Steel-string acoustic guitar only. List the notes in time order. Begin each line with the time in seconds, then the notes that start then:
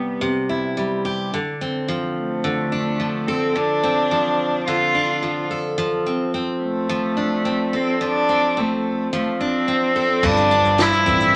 Already playing: C3 G3 B3 E4 G4
0.21 C3
0.49 E4
0.77 G3
1.05 G4
1.34 D3
1.61 C4
1.88 F3
2.44 D3
2.72 D4
3.00 F3
3.28 A4
3.56 D3
3.84 C4
4.11 F3
4.68 D3
4.95 D4
5.23 F3
5.51 A4
5.78 F3
6.06 C4
6.34 C4
6.89 F3
7.17 D4
7.45 C4
7.73 A4
8.01 F3
8.29 C4
8.57 C4
9.13 F3
9.41 D4
9.68 C4
9.96 A4
10.23 G2
10.51 D4
10.78 F3
11.06 C4